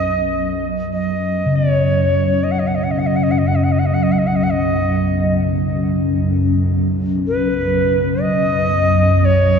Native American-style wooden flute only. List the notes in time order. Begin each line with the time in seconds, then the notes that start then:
Already playing: D#5
0.93 D#5
1.56 C#5
2.44 D#5
2.52 F#5
2.59 D#5
2.67 F#5
2.75 D#5
2.84 F#5
2.91 D#5
2.99 F#5
3.07 D#5
3.16 F#5
3.23 D#5
3.31 F#5
3.38 D#5
3.47 F#5
3.55 D#5
3.64 F#5
3.72 D#5
3.79 F#5
3.86 D#5
3.94 F#5
4.03 D#5
4.12 F#5
4.18 D#5
4.27 F#5
4.36 D#5
4.43 F#5
4.50 D#5
7.27 B4
8.21 D#5
9.25 C#5